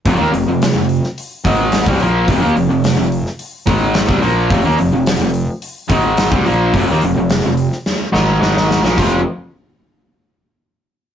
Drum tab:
CC |----------------|----------------|----------------|----------------|
HH |o-o-o-o-o-o-o-o-|o-o-o-o-o-o-o-o-|o-o-o-o-o-o-o-o-|o-o-o-o---------|
SD |----o--o----o---|----o--o----o---|----o-------o---|----o--oo-o-oooo|
BD |o---------o--o--|o---------o--o--|o---------o--o--|o---------------|

CC |x---------------|
HH |----------------|
SD |----------------|
BD |o---------------|